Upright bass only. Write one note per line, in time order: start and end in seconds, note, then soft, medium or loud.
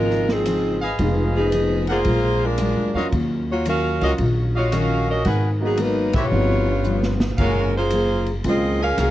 0.00 0.95 G#1 medium
1.00 2.02 F1 medium
2.06 2.73 A#1 medium
2.77 2.93 D2 medium
2.94 3.11 E2 medium
3.13 3.98 D#2 medium
4.01 4.18 C#2 medium
4.19 5.22 A#1 medium
5.26 6.28 G#1 medium
6.32 7.34 G1 medium
7.38 8.41 F#1 medium
8.44 8.94 C#2 medium
8.98 9.11 C2 medium